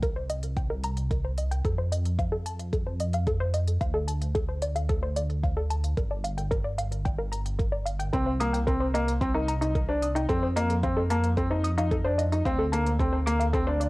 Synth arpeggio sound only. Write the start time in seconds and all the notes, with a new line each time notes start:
0.03 A#4
0.16 C5
0.30 D#5
0.57 G5
0.70 A#4
0.84 A#5
1.11 A#4
1.24 C5
1.38 D#5
1.51 G5
1.65 A4
1.78 C5
1.92 D#5
2.19 F5
2.32 A4
2.46 A5
2.73 A4
2.87 C5
3.01 D#5
3.14 F5
3.27 A4
3.40 C5
3.54 D#5
3.81 F5
3.94 A4
4.08 A5
4.35 A4
4.49 C5
4.62 D5
4.75 F5
4.89 A4
5.03 C5
5.16 D5
5.43 F5
5.57 A4
5.70 A5
5.97 A#4
6.11 D5
6.24 F5
6.37 G5
6.51 A#4
6.64 D5
6.78 F5
7.05 G5
7.18 A#4
7.32 A#5
7.59 A#4
7.72 D5
7.86 F5
7.99 G5
8.13 A#4
8.26 C5
8.40 D#6
8.53 G5
8.67 A#4
8.80 C5
8.94 D#5
9.21 G5
9.35 A#4
9.48 A#5
9.75 A#4
9.89 C5
10.02 D#6
10.16 G5
10.29 A4
10.43 C5
10.56 D#5
10.83 F5
10.97 A4
11.10 A5
11.38 A4
11.51 C5
11.64 D#6
11.78 F5
11.92 A4
12.05 C5
12.18 D#5
12.45 F5
12.59 A4
12.72 A5
12.99 A4
13.13 C5
13.26 D6
13.40 F5
13.53 A4
13.67 C5
13.80 D5